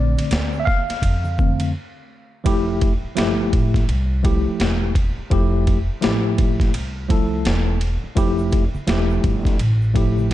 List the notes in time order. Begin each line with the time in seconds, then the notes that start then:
Already playing: A#1 D3 A3 C4 D5
0.17 muted upright bass stroke, ride, high conga, shaker
0.31 D2, snare, hi-hat pedal, ride, low conga, shaker
0.53 shaker
0.60 E5
0.65 F5, kick, snare, high conga, low conga, shaker
0.89 muted upright bass stroke, snare, ride, shaker
1.02 F2, kick, ride, high conga, shaker
1.24 high conga, shaker
1.38 D3 A3 C4, kick, shaker
1.60 ride, high conga, shaker
2.44 F1 F3 A3 E4 G4, kick, ride
2.81 kick, ride
3.03 muted upright bass stroke
3.15 G1 F3 A3 E4 G4, snare, hi-hat pedal, ride
3.53 A1, kick, ride
3.74 kick, snare, ride
3.88 C2, ride
4.23 F3 A3 E4 G4, kick, ride
4.46 muted upright bass stroke
4.60 E1, snare, hi-hat pedal, ride
4.95 kick, ride
5.17 muted upright bass stroke
5.30 F1 F3 A3 E4 G4, kick, ride
5.67 kick, ride
5.89 muted upright bass stroke
6.01 A1 F3 A3 E4 G4, snare, hi-hat pedal, ride
6.38 kick, ride
6.60 kick, snare, ride
6.74 C2, ride
7.08 F3 A3 E4 A4, kick, ride
7.45 E1, snare, hi-hat pedal, ride
7.81 ride
8.03 muted upright bass stroke
8.15 F1 F3 A3 E4 G4, kick, ride, shaker
8.38 shaker
8.52 kick, ride, shaker
8.74 muted upright bass stroke, high conga, shaker
8.87 E1 F3 A3 E4 G4, snare, hi-hat pedal, ride, low conga, shaker
9.10 shaker
9.24 G1, kick, ride, high conga, low conga, shaker
9.45 kick, snare, ride, shaker
9.59 A1, ride, high conga, shaker
9.82 shaker
9.94 F3 A3 E4 G4, kick, ride, shaker
10.18 high conga, shaker